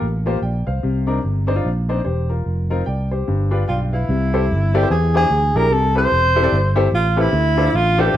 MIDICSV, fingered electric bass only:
0, 0, Header, 1, 2, 480
1, 0, Start_track
1, 0, Tempo, 406229
1, 982, Time_signature, 4, 2, 24, 8
1, 9654, End_track
2, 0, Start_track
2, 0, Title_t, "Fingered electric bass"
2, 0, Program_c, 0, 33
2, 21, Note_on_c, 0, 33, 83
2, 429, Note_off_c, 0, 33, 0
2, 494, Note_on_c, 0, 34, 70
2, 746, Note_off_c, 0, 34, 0
2, 796, Note_on_c, 0, 36, 74
2, 955, Note_off_c, 0, 36, 0
2, 988, Note_on_c, 0, 36, 92
2, 1396, Note_off_c, 0, 36, 0
2, 1470, Note_on_c, 0, 31, 80
2, 1879, Note_off_c, 0, 31, 0
2, 1946, Note_on_c, 0, 34, 82
2, 2357, Note_off_c, 0, 34, 0
2, 2431, Note_on_c, 0, 28, 79
2, 2841, Note_off_c, 0, 28, 0
2, 2909, Note_on_c, 0, 29, 80
2, 3321, Note_off_c, 0, 29, 0
2, 3394, Note_on_c, 0, 36, 75
2, 3805, Note_off_c, 0, 36, 0
2, 3878, Note_on_c, 0, 31, 78
2, 4287, Note_off_c, 0, 31, 0
2, 4354, Note_on_c, 0, 35, 62
2, 4765, Note_off_c, 0, 35, 0
2, 4831, Note_on_c, 0, 36, 110
2, 5312, Note_on_c, 0, 31, 85
2, 5330, Note_off_c, 0, 36, 0
2, 5722, Note_off_c, 0, 31, 0
2, 5793, Note_on_c, 0, 40, 96
2, 6202, Note_off_c, 0, 40, 0
2, 6263, Note_on_c, 0, 38, 92
2, 6516, Note_off_c, 0, 38, 0
2, 6554, Note_on_c, 0, 34, 87
2, 6739, Note_off_c, 0, 34, 0
2, 6739, Note_on_c, 0, 36, 101
2, 7151, Note_off_c, 0, 36, 0
2, 7225, Note_on_c, 0, 28, 89
2, 7633, Note_off_c, 0, 28, 0
2, 7706, Note_on_c, 0, 31, 102
2, 8113, Note_off_c, 0, 31, 0
2, 8177, Note_on_c, 0, 33, 96
2, 8586, Note_off_c, 0, 33, 0
2, 8659, Note_on_c, 0, 38, 113
2, 9066, Note_off_c, 0, 38, 0
2, 9137, Note_on_c, 0, 33, 102
2, 9543, Note_off_c, 0, 33, 0
2, 9617, Note_on_c, 0, 33, 103
2, 9654, Note_off_c, 0, 33, 0
2, 9654, End_track
0, 0, End_of_file